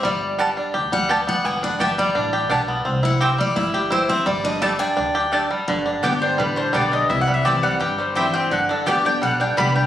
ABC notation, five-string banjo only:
X:1
M:4/4
L:1/8
Q:1/4=170
K:G
V:1 name="Five-string banjo"
G,2 G, D G G, G B, | B, D G G, D G D B, | C E G G, E G E C | G, D G, D D G D G, |
D, D G D G, D G, D | E G, G G, G G, G C | D, D G D G, D G, D |]